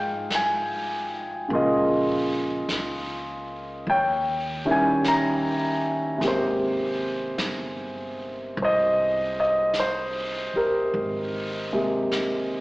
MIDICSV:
0, 0, Header, 1, 5, 480
1, 0, Start_track
1, 0, Key_signature, -4, "major"
1, 0, Tempo, 1183432
1, 609, Time_signature, 4, 2, 24, 8
1, 5113, End_track
2, 0, Start_track
2, 0, Title_t, "Grand piano"
2, 0, Program_c, 0, 0
2, 0, Control_c, 0, 64, 127
2, 0, Note_on_c, 0, 51, 36
2, 0, Note_on_c, 0, 53, 36
2, 0, Note_on_c, 0, 56, 37
2, 0, Note_on_c, 0, 63, 34
2, 0, Note_on_c, 0, 65, 40
2, 0, Note_on_c, 0, 68, 49
2, 0, Note_on_c, 0, 77, 60
2, 0, Note_on_c, 0, 79, 63
2, 109, Note_off_c, 0, 79, 0
2, 141, Note_on_c, 0, 80, 63
2, 599, Note_off_c, 0, 68, 0
2, 602, Note_on_c, 0, 49, 44
2, 603, Note_off_c, 0, 56, 0
2, 607, Note_off_c, 0, 51, 0
2, 609, Note_off_c, 0, 53, 0
2, 609, Note_on_c, 0, 56, 38
2, 610, Note_off_c, 0, 65, 0
2, 612, Note_on_c, 0, 58, 41
2, 613, Note_off_c, 0, 63, 0
2, 615, Control_c, 0, 64, 0
2, 617, Note_off_c, 0, 77, 0
2, 621, Note_on_c, 0, 65, 48
2, 628, Note_on_c, 0, 75, 63
2, 631, Note_off_c, 0, 80, 0
2, 633, Note_on_c, 0, 68, 43
2, 677, Control_c, 0, 64, 127
2, 1563, Note_off_c, 0, 75, 0
2, 1565, Note_off_c, 0, 68, 0
2, 1566, Note_off_c, 0, 49, 0
2, 1569, Note_off_c, 0, 56, 0
2, 1571, Note_off_c, 0, 58, 0
2, 1575, Control_c, 0, 64, 0
2, 1576, Note_off_c, 0, 65, 0
2, 1580, Note_on_c, 0, 79, 75
2, 1582, Note_on_c, 0, 73, 51
2, 1641, Control_c, 0, 64, 127
2, 1876, Note_off_c, 0, 79, 0
2, 1887, Note_on_c, 0, 51, 47
2, 1889, Note_on_c, 0, 61, 41
2, 1890, Note_on_c, 0, 55, 41
2, 1893, Note_on_c, 0, 64, 53
2, 1910, Note_on_c, 0, 80, 72
2, 2061, Note_on_c, 0, 82, 75
2, 2062, Note_off_c, 0, 80, 0
2, 2506, Note_on_c, 0, 48, 47
2, 2510, Note_off_c, 0, 73, 0
2, 2515, Note_on_c, 0, 56, 44
2, 2520, Note_off_c, 0, 51, 0
2, 2521, Note_off_c, 0, 61, 0
2, 2522, Note_off_c, 0, 55, 0
2, 2523, Note_off_c, 0, 64, 0
2, 2524, Note_on_c, 0, 58, 41
2, 2526, Control_c, 0, 64, 0
2, 2528, Note_on_c, 0, 67, 53
2, 2537, Note_off_c, 0, 67, 0
2, 2542, Note_off_c, 0, 82, 0
2, 2543, Note_on_c, 0, 67, 43
2, 2546, Note_on_c, 0, 72, 59
2, 2594, Control_c, 0, 64, 127
2, 3313, Note_off_c, 0, 72, 0
2, 3472, Note_off_c, 0, 67, 0
2, 3498, Note_on_c, 0, 72, 55
2, 3506, Note_on_c, 0, 75, 79
2, 3795, Note_off_c, 0, 75, 0
2, 3812, Note_on_c, 0, 75, 72
2, 3953, Note_off_c, 0, 75, 0
2, 3967, Note_off_c, 0, 72, 0
2, 3973, Note_on_c, 0, 72, 67
2, 4282, Note_on_c, 0, 67, 39
2, 4286, Note_on_c, 0, 70, 61
2, 4293, Note_off_c, 0, 72, 0
2, 4429, Note_off_c, 0, 48, 0
2, 4434, Note_off_c, 0, 56, 0
2, 4438, Note_off_c, 0, 58, 0
2, 4756, Note_on_c, 0, 48, 43
2, 4757, Note_off_c, 0, 67, 0
2, 4757, Note_on_c, 0, 56, 37
2, 4759, Note_on_c, 0, 58, 36
2, 4763, Note_on_c, 0, 67, 43
2, 5113, Note_off_c, 0, 48, 0
2, 5113, Note_off_c, 0, 56, 0
2, 5113, Note_off_c, 0, 58, 0
2, 5113, Note_off_c, 0, 67, 0
2, 5113, Note_off_c, 0, 70, 0
2, 5113, End_track
3, 0, Start_track
3, 0, Title_t, "Upright bass"
3, 0, Program_c, 1, 32
3, 0, Note_on_c, 1, 44, 65
3, 592, Note_off_c, 1, 44, 0
3, 609, Note_on_c, 1, 34, 58
3, 1074, Note_off_c, 1, 34, 0
3, 1089, Note_on_c, 1, 37, 52
3, 1553, Note_off_c, 1, 37, 0
3, 1568, Note_on_c, 1, 39, 70
3, 2503, Note_off_c, 1, 39, 0
3, 2519, Note_on_c, 1, 32, 64
3, 2980, Note_off_c, 1, 32, 0
3, 2996, Note_on_c, 1, 31, 53
3, 3461, Note_off_c, 1, 31, 0
3, 3477, Note_on_c, 1, 36, 72
3, 4259, Note_off_c, 1, 36, 0
3, 4436, Note_on_c, 1, 32, 61
3, 5113, Note_off_c, 1, 32, 0
3, 5113, End_track
4, 0, Start_track
4, 0, Title_t, "Muted upright bass strokes"
4, 4272, Note_on_c, 9, 29, 31
4, 4313, Note_off_c, 9, 29, 0
4, 5113, End_track
5, 0, Start_track
5, 0, Title_t, "Drums"
5, 123, Note_on_c, 9, 25, 24
5, 123, Note_on_c, 9, 38, 32
5, 123, Note_on_c, 9, 44, 45
5, 163, Note_off_c, 9, 38, 0
5, 163, Note_off_c, 9, 44, 0
5, 613, Note_off_c, 9, 25, 0
5, 613, Note_on_c, 9, 25, 31
5, 1090, Note_off_c, 9, 25, 0
5, 1090, Note_on_c, 9, 25, 27
5, 1090, Note_on_c, 9, 38, 35
5, 1090, Note_on_c, 9, 44, 44
5, 1130, Note_off_c, 9, 38, 0
5, 1130, Note_off_c, 9, 44, 0
5, 1569, Note_off_c, 9, 25, 0
5, 1569, Note_on_c, 9, 25, 30
5, 2045, Note_off_c, 9, 25, 0
5, 2045, Note_on_c, 9, 25, 29
5, 2045, Note_on_c, 9, 38, 34
5, 2045, Note_on_c, 9, 44, 39
5, 2086, Note_off_c, 9, 38, 0
5, 2086, Note_off_c, 9, 44, 0
5, 2519, Note_off_c, 9, 25, 0
5, 2519, Note_on_c, 9, 25, 34
5, 2519, Note_on_c, 9, 38, 21
5, 2560, Note_off_c, 9, 38, 0
5, 2994, Note_off_c, 9, 25, 0
5, 2994, Note_on_c, 9, 25, 26
5, 2994, Note_on_c, 9, 38, 35
5, 2994, Note_on_c, 9, 44, 47
5, 3034, Note_off_c, 9, 38, 0
5, 3034, Note_off_c, 9, 44, 0
5, 3471, Note_off_c, 9, 25, 0
5, 3471, Note_on_c, 9, 25, 28
5, 3949, Note_off_c, 9, 25, 0
5, 3949, Note_on_c, 9, 25, 32
5, 3949, Note_on_c, 9, 38, 36
5, 3949, Note_on_c, 9, 44, 48
5, 3989, Note_off_c, 9, 38, 0
5, 3989, Note_off_c, 9, 44, 0
5, 4430, Note_off_c, 9, 25, 0
5, 4430, Note_on_c, 9, 25, 34
5, 4914, Note_off_c, 9, 25, 0
5, 4914, Note_on_c, 9, 25, 27
5, 4914, Note_on_c, 9, 38, 36
5, 4914, Note_on_c, 9, 44, 42
5, 4955, Note_off_c, 9, 38, 0
5, 4955, Note_off_c, 9, 44, 0
5, 5113, Note_off_c, 9, 25, 0
5, 5113, End_track
0, 0, End_of_file